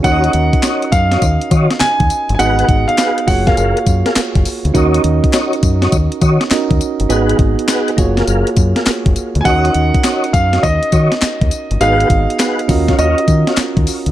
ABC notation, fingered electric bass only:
X:1
M:4/4
L:1/16
Q:"Swing 16ths" 1/4=102
K:Ebm
V:1 name="Fingered electric bass" clef=bass
E,,2 E,, z3 G,,2 E,, z E, z2 E,, z =G,,, | A,,,2 A,,, z3 G,,,2 G,,, z G,, z2 G,,, z =D,, | E,,2 E,, z3 G,,2 E,, z E, z2 E,, z =G,,, | A,,,2 A,,, z3 G,,,2 G,,, z G,, z2 G,,, z =D,, |
E,,2 E,, z3 G,,2 E,, z E, z2 E,, z =G,,, | A,,,2 A,,, z3 E,,2 E,, z E, z2 E,, z =D,, |]